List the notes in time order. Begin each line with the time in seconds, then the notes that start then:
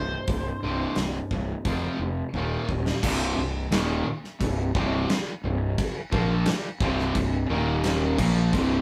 Already playing: C1 C2 G2 C5
0.27 C1 C2 G2, kick, open hi-hat
0.63 C1 C2 G2 C3
0.95 C1 C2 G2, snare, open hi-hat
1.31 C1 C2 G2, kick
1.65 F1 F2 C3 F3, kick, open hi-hat
1.99 F1 F2 C3
2.33 D#1 D#2 A#2, kick
2.37 D#3
2.68 D#1 D#2 A#2, kick
2.86 snare
3.03 C1 C2 G2 C3, kick, crash
3.38 C1 C2 G2
3.72 D#1 D#2 A#2 D#3, snare, crash
4.06 muted distorted electric guitar stroke, muted fingered electric bass stroke, muted overdriven electric guitar stroke
4.24 snare
4.41 C1 C2 G2, kick, crash
4.75 C1 C2 G2 C3, kick
5.09 muted fingered electric bass stroke, muted distorted electric guitar stroke, muted overdriven electric guitar stroke, snare, crash
5.44 C1 C2 G2
5.78 kick, crash
6.11 A#1 A#2 F3 A#3, kick
6.46 muted overdriven electric guitar stroke, muted fingered electric bass stroke, muted distorted electric guitar stroke, snare, crash
6.80 C1 C2 G2 C3, kick
6.99 snare
7.14 C1 C2 G2, kick, crash
7.49 D#1 D#2 A#2 D#3
7.84 snare, crash
8.18 A#1 A#2 F3 A#3, kick, crash
8.53 C1 C2 G2 C3, kick, crash